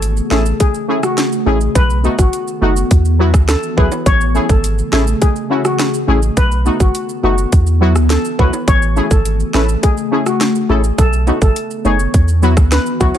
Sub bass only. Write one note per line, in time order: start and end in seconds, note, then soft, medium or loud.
0.00 0.21 G#1 loud
0.31 0.53 A1 medium
1.47 1.69 A1 loud
1.75 2.08 B1 loud
2.19 2.30 G#1 medium
2.62 2.84 F#1 loud
2.91 3.35 E2 loud
3.34 3.56 D2 medium
3.78 3.88 C#2 loud
4.06 4.39 A1 loud
4.49 4.82 G#1 loud
4.93 5.15 A1 medium
6.08 6.30 A1 loud
6.37 6.70 B1 loud
6.80 6.91 G#1 medium
7.24 7.46 F#1 loud
7.53 7.97 E2 loud
7.96 8.18 D2 loud
8.39 8.50 C#2 medium
8.68 9.01 A1 loud
9.11 9.44 G#1 medium
9.54 9.76 A1 medium
10.70 10.92 A1 loud
10.98 11.31 B1 loud
11.42 11.53 G#1 medium
11.85 12.07 F#1 loud
12.14 12.58 E2 loud
12.57 12.79 D2 medium
13.01 13.12 C#2 loud